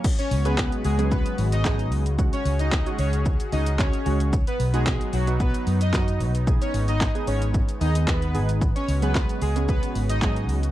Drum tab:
CC |x---------------|----------------|----------------|----------------|
HH |-xox-xox-xox-xox|-xox-xox-xox-xox|-xox-xox-xox-xox|-xox-xox-xox-xox|
SH |xxxxxxxxxxxxxxxx|xxxxxxxxxxxxxxxx|xxxxxxxxxxxxxxxx|xxxxxxxxxxxxxxxx|
CP |----x-------x---|----x-------x---|----x-------x---|----x-------x---|
SD |----o-------o---|----o-------o---|----o-------o---|----o-------o---|
BD |o---o---o---o---|o---o---o---o---|o---o---o---o---|o---o---o---o---|

CC |----------------|
HH |-xox-xox-xox-xox|
SH |xxxxxxxxxxxxxxxx|
CP |----x-------x---|
SD |----o-------o---|
BD |o---o---o---o---|